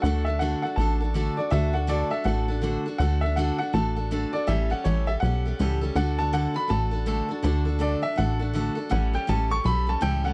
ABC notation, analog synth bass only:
X:1
M:4/4
L:1/8
Q:"Swing" 1/4=162
K:D
V:1 name="Analog synth bass" clef=bass
D,,4 A,,,4 | D,,4 A,,,4 | D,,4 A,,,4 | A,,,2 A,,,2 B,,,2 C,,2 |
D,,4 A,,,4 | D,,4 A,,,4 | A,,,2 A,,,2 B,,,2 C,,2 |]